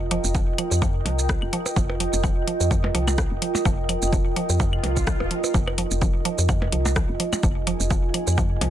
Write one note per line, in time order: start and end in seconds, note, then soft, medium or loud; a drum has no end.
0.00 0.19 F1 loud
0.00 8.70 F4 medium
0.00 8.70 A#4 medium
0.00 8.70 D#5 medium
0.00 6.21 G5 loud
0.11 0.15 F3 loud
0.11 open hi-hat medium
0.24 0.54 F1 medium
0.24 shaker medium
0.35 0.39 F3 medium
0.35 kick loud
0.35 percussion blips medium
0.35 shaker soft
0.58 0.62 F3 medium
0.58 open hi-hat medium
0.58 claves medium
0.71 1.01 F2 medium
0.71 shaker medium
0.82 0.86 F3 loud
0.82 kick loud
0.82 percussion blips medium
0.82 shaker soft
1.05 1.37 C2 medium
1.05 1.09 F3 medium
1.05 open hi-hat medium
1.05 percussion blips medium
1.19 shaker medium
1.29 1.33 F3 medium
1.29 kick loud
1.29 cross-stick loud
1.29 percussion blips soft
1.29 shaker soft
1.42 1.50 F1 loud
1.42 claves medium
1.53 1.57 F3 loud
1.53 open hi-hat medium
1.66 percussion blips medium
1.66 shaker soft
1.76 2.08 F1 loud
1.76 1.80 F3 medium
1.76 kick loud
1.76 percussion blips medium
1.76 shaker soft
1.90 percussion blips medium
2.00 2.04 F3 medium
2.00 open hi-hat medium
2.13 2.43 F1 medium
2.13 shaker medium
2.24 2.27 F3 loud
2.24 kick loud
2.24 percussion blips medium
2.24 claves medium
2.24 shaker soft
2.47 2.51 F3 medium
2.47 open hi-hat medium
2.60 2.90 F2 medium
2.60 shaker medium
2.71 2.75 F3 medium
2.71 kick loud
2.71 percussion blips soft
2.71 shaker soft
2.84 percussion blips soft
2.84 percussion blips medium
2.95 3.26 C2 medium
2.95 2.98 F3 loud
2.95 open hi-hat medium
3.08 percussion blips medium
3.08 claves medium
3.08 shaker medium
3.18 3.22 F3 medium
3.18 kick loud
3.18 cross-stick loud
3.18 percussion blips medium
3.18 shaker soft
3.31 3.39 F1 loud
3.42 3.46 F3 medium
3.42 open hi-hat medium
3.55 percussion blips medium
3.55 shaker medium
3.65 3.97 F1 loud
3.65 3.69 F3 loud
3.65 kick loud
3.65 percussion blips medium
3.65 shaker soft
3.89 3.93 F3 medium
3.89 open hi-hat medium
3.89 claves medium
4.02 4.32 F1 medium
4.02 shaker medium
4.13 4.16 F3 medium
4.13 kick loud
4.13 percussion blips soft
4.13 shaker soft
4.36 4.40 F3 loud
4.36 open hi-hat medium
4.49 4.79 F2 medium
4.49 shaker medium
4.60 4.64 F3 medium
4.60 kick loud
4.60 swell medium
4.60 percussion blips medium
4.60 shaker soft
4.73 claves medium
4.83 5.15 C2 medium
4.83 4.87 F3 medium
4.83 open hi-hat medium
4.83 percussion blips medium
4.97 kick medium
4.97 shaker medium
5.07 5.11 F3 loud
5.07 kick loud
5.07 cross-stick loud
5.07 percussion blips medium
5.07 shaker soft
5.20 5.28 D#1 loud
5.20 percussion blips medium
5.31 5.35 F3 medium
5.31 open hi-hat medium
5.44 percussion blips medium
5.44 shaker medium
5.54 5.86 F1 loud
5.54 5.58 F3 loud
5.54 kick loud
5.54 percussion blips medium
5.54 shaker soft
5.67 percussion blips medium
5.67 claves medium
5.78 5.82 F3 medium
5.78 open hi-hat medium
5.91 6.21 F1 medium
5.91 shaker medium
6.02 6.05 F3 medium
6.02 kick loud
6.02 percussion blips soft
6.02 shaker soft
6.19 8.70 G#5 loud
6.25 6.29 F3 loud
6.25 open hi-hat medium
6.38 6.68 F2 medium
6.38 shaker medium
6.49 6.53 F3 medium
6.49 kick loud
6.49 percussion blips medium
6.49 claves medium
6.49 shaker soft
6.62 percussion blips medium
6.72 7.04 C2 medium
6.72 6.76 F3 medium
6.72 open hi-hat medium
6.86 percussion blips loud
6.86 shaker medium
6.96 7.00 F3 loud
6.96 kick loud
6.96 cross-stick loud
6.96 percussion blips medium
6.96 shaker soft
7.09 7.17 F1 loud
7.20 7.24 F3 medium
7.20 open hi-hat medium
7.33 percussion blips medium
7.33 claves medium
7.33 shaker medium
7.43 7.75 F1 medium
7.43 7.47 F3 medium
7.43 kick loud
7.43 percussion blips soft
7.43 shaker soft
7.67 7.71 F3 loud
7.67 open hi-hat medium
7.80 8.10 F1 medium
7.80 shaker medium
7.91 7.94 F3 medium
7.91 kick loud
7.91 percussion blips medium
7.91 shaker soft
8.14 8.18 F3 medium
8.14 open hi-hat loud
8.14 claves medium
8.27 8.57 F2 medium
8.27 shaker medium
8.38 8.42 F3 loud
8.38 kick loud
8.38 percussion blips medium
8.38 shaker soft
8.61 8.70 C2 medium
8.61 8.65 F3 medium
8.61 open hi-hat medium
8.61 percussion blips medium